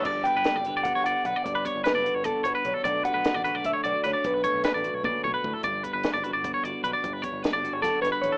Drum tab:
CC |x------|-------|-------|-------|
HH |-xxxxxx|xxxxxxx|xxxxxxx|xxxx---|
SD |--o----|--o----|--o---o|--o----|
T1 |-------|-------|-------|----o--|
T2 |-------|-------|-------|-----o-|
BD |oo--o--|oo--o-o|oo--o--|oo--o-o|

CC |-------|-------|
HH |xxxxxxx|xxxxxxx|
SD |--o----|--o-oo-|
T1 |-------|-------|
T2 |-------|-------|
BD |oo--o--|oo--o-o|